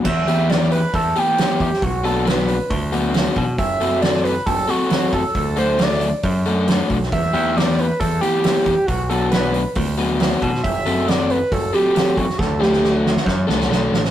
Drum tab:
CC |x---------------|----------------|----------------|----------------|
HH |--o-o-o-o-o-o-o-|o-o-o-o-o-o-o-o-|o-o-o-o-o-o-o-o-|o-o-o-o-o-o-o-o-|
SD |----oo------o--o|----oo------o---|----oo------o---|----oo------o--o|
BD |o-------o-----o-|o-------o-----o-|o-------o-----o-|o-------o-----o-|

CC |----------------|----------------|----------------|----------------|
HH |o-o-o-o-o-o-o-o-|o-o-o-o-o-o-o-o-|o-o-o-o-o-o-o-o-|----------------|
SD |----oo------o---|----o-------o--o|----o-------o--o|o-ooo-ooo-ooo-oo|
BD |o-------o-----o-|o-------o-----o-|o-------o-----o-|o-------o-------|